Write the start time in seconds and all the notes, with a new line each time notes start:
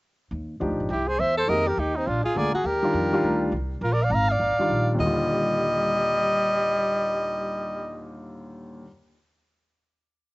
0.31 D#2
0.60 D2 F3 D4 D#4 G4
0.71 A#1
0.80 G1
0.90 C2 E4 G4
1.08 G#4 C5
1.19 E2 C5 E5
1.37 A4 C5
1.47 F2 D#3 G#3 A#3 G4 A#4 D#5
1.67 G4 A#4
1.77 D#2 D#4 G4
1.96 C4 D#4
2.07 A#1 D4 F4
2.24 F4 G#4, muted upright bass stroke
2.35 D2 D3 G#3 A#3 F4 G#4 D5
2.53 F#4 G#4, muted upright bass stroke
2.64 D#2 G4 A#4
2.83 D#3 G3 D4 F4
2.94 F2
3.13 D#3 G3 D4 F4
3.24 D2
3.52 C2
3.81 A#1 F4 A#4
3.93 A#4 D5
4.03 D5 F5
4.10 G#1 A#5
4.15 F5
4.29 D5 F5
4.39 G1
4.58 D#3 G3 D4 F4, muted upright bass stroke
4.69 A#1
4.94 D#2 A#2
4.99 D#2 D3 G3 D#5
5.03 G3 F4